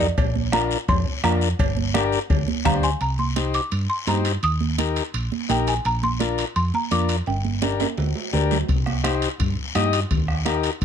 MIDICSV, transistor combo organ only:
0, 0, Header, 1, 2, 480
1, 0, Start_track
1, 0, Key_signature, -3, "minor"
1, 0, Tempo, 354610
1, 237, Time_signature, 4, 2, 24, 8
1, 14685, End_track
2, 0, Start_track
2, 0, Title_t, "Transistor combo organ"
2, 0, Program_c, 0, 18
2, 710, Note_on_c, 0, 62, 68
2, 719, Note_on_c, 0, 65, 64
2, 725, Note_on_c, 0, 70, 77
2, 1048, Note_off_c, 0, 62, 0
2, 1053, Note_off_c, 0, 65, 0
2, 1055, Note_off_c, 0, 70, 0
2, 1673, Note_on_c, 0, 62, 77
2, 1678, Note_on_c, 0, 65, 68
2, 1683, Note_on_c, 0, 70, 77
2, 2009, Note_off_c, 0, 62, 0
2, 2011, Note_off_c, 0, 65, 0
2, 2013, Note_off_c, 0, 70, 0
2, 2627, Note_on_c, 0, 62, 84
2, 2632, Note_on_c, 0, 67, 72
2, 2637, Note_on_c, 0, 70, 89
2, 2965, Note_off_c, 0, 62, 0
2, 2968, Note_off_c, 0, 67, 0
2, 2971, Note_off_c, 0, 70, 0
2, 3582, Note_on_c, 0, 62, 76
2, 3588, Note_on_c, 0, 67, 70
2, 3592, Note_on_c, 0, 72, 81
2, 3923, Note_off_c, 0, 62, 0
2, 3926, Note_off_c, 0, 67, 0
2, 3928, Note_off_c, 0, 72, 0
2, 4545, Note_on_c, 0, 63, 55
2, 4552, Note_on_c, 0, 67, 53
2, 4556, Note_on_c, 0, 72, 63
2, 4886, Note_off_c, 0, 63, 0
2, 4889, Note_off_c, 0, 67, 0
2, 4891, Note_off_c, 0, 72, 0
2, 5511, Note_on_c, 0, 63, 59
2, 5516, Note_on_c, 0, 67, 55
2, 5520, Note_on_c, 0, 72, 70
2, 5850, Note_off_c, 0, 63, 0
2, 5852, Note_off_c, 0, 67, 0
2, 5855, Note_off_c, 0, 72, 0
2, 6472, Note_on_c, 0, 63, 61
2, 6476, Note_on_c, 0, 67, 57
2, 6482, Note_on_c, 0, 70, 64
2, 6811, Note_off_c, 0, 63, 0
2, 6813, Note_off_c, 0, 67, 0
2, 6816, Note_off_c, 0, 70, 0
2, 7429, Note_on_c, 0, 63, 64
2, 7436, Note_on_c, 0, 67, 53
2, 7440, Note_on_c, 0, 70, 63
2, 7771, Note_off_c, 0, 63, 0
2, 7774, Note_off_c, 0, 67, 0
2, 7776, Note_off_c, 0, 70, 0
2, 8386, Note_on_c, 0, 62, 60
2, 8394, Note_on_c, 0, 65, 60
2, 8398, Note_on_c, 0, 70, 68
2, 8730, Note_off_c, 0, 62, 0
2, 8734, Note_off_c, 0, 65, 0
2, 8736, Note_off_c, 0, 70, 0
2, 9356, Note_on_c, 0, 62, 64
2, 9360, Note_on_c, 0, 65, 65
2, 9367, Note_on_c, 0, 70, 63
2, 9695, Note_off_c, 0, 62, 0
2, 9697, Note_off_c, 0, 65, 0
2, 9700, Note_off_c, 0, 70, 0
2, 10311, Note_on_c, 0, 62, 57
2, 10315, Note_on_c, 0, 67, 56
2, 10326, Note_on_c, 0, 70, 59
2, 10652, Note_off_c, 0, 62, 0
2, 10654, Note_off_c, 0, 67, 0
2, 10660, Note_off_c, 0, 70, 0
2, 11273, Note_on_c, 0, 62, 76
2, 11275, Note_on_c, 0, 67, 73
2, 11281, Note_on_c, 0, 70, 79
2, 11613, Note_off_c, 0, 62, 0
2, 11614, Note_off_c, 0, 67, 0
2, 11617, Note_off_c, 0, 70, 0
2, 12229, Note_on_c, 0, 63, 71
2, 12232, Note_on_c, 0, 67, 64
2, 12241, Note_on_c, 0, 72, 76
2, 12570, Note_off_c, 0, 63, 0
2, 12572, Note_off_c, 0, 67, 0
2, 12577, Note_off_c, 0, 72, 0
2, 13198, Note_on_c, 0, 63, 77
2, 13202, Note_on_c, 0, 67, 74
2, 13207, Note_on_c, 0, 75, 78
2, 13535, Note_off_c, 0, 63, 0
2, 13537, Note_off_c, 0, 67, 0
2, 13540, Note_off_c, 0, 75, 0
2, 14145, Note_on_c, 0, 63, 74
2, 14151, Note_on_c, 0, 67, 58
2, 14155, Note_on_c, 0, 70, 86
2, 14488, Note_off_c, 0, 63, 0
2, 14491, Note_off_c, 0, 67, 0
2, 14493, Note_off_c, 0, 70, 0
2, 14685, End_track
0, 0, End_of_file